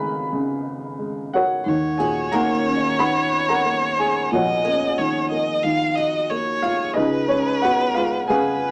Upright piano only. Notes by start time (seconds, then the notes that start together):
Already playing: G#1 G#2 C#3 F4 G#4 A#4 B4 F5 G#5 A#5 B5
0.00 G#3
0.33 C#3
0.99 G#3
1.34 F#4 A#4 C#5 F#5
1.66 D#2 D#3
1.98 A#2 G#4 G#5
2.31 D#3 A#4 F#5 A#5
2.66 C#4
2.99 D#3 B4 F#5 B5
3.49 A#4 F#5 A#5
3.66 A#3
3.98 G#4 G#5
4.32 A#1 A#2 F#4 A#4 C#5 F#5
4.64 A#3
4.99 D#3
5.32 A#3
5.64 D#3
6.31 A#3
6.62 F4 F5
6.94 C#2 C#3 D#4 G#4 B4 D#5
7.28 G#3 C#4 C#5
7.62 B3 F#4 F#5
7.94 G#3 F4 F5
8.27 C#3 G#4 B4 F5 G#5